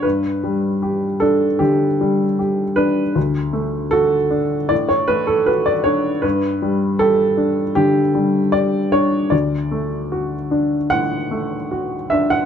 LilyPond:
<<
  \new Staff \with { instrumentName = "Upright piano" } { \time 4/4 \key d \major \tempo 4 = 77 b'4. a'8 g'4. b'8 | r4 a'4 d''16 cis''16 b'16 a'16 b'16 d''16 cis''8 | b'4 a'4 g'4 d''8 cis''8 | d''2 fis''4. e''16 fis''16 | }
  \new Staff \with { instrumentName = "Upright piano" } { \time 4/4 \key d \major g,8 g8 g'8 d'8 d8 g8 g'8 d'8 | d,8 a8 fis'8 d'8 a,8 a8 fis'8 d'8 | g,8 g8 g'8 d'8 d8 g8 g'8 d'8 | d,8 a8 fis'8 d'8 a,8 a8 fis'8 d'8 | }
>>